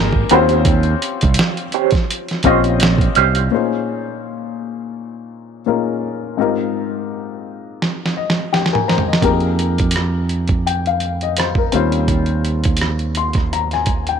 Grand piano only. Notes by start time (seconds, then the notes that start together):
Already playing: A#3 D#4 G4 G#4 A#4 B4 C5
0.31 C4 C#4 F4 G4 C5
2.45 C4 C#4 F4 G4 D#5
3.51 A#2 C#4 D#4 F4 G#4 C5
5.66 A#2 C#4 D#4 F4 G#4 A#4
6.37 G#2 C4 D#4 F4 G4 A#4
8.17 D#5
8.53 G4 G5
8.73 A#4 G#5
8.88 C5 A#5
9.08 D#5
9.22 A#3 D#4 G4 G#4 A#4
10.67 G5
10.87 F5
11.23 D#5
11.38 C5
11.58 A#4
11.72 G3 C4 C#4 F4 C5
13.17 C6
13.53 A#5
13.73 G#5
14.09 G5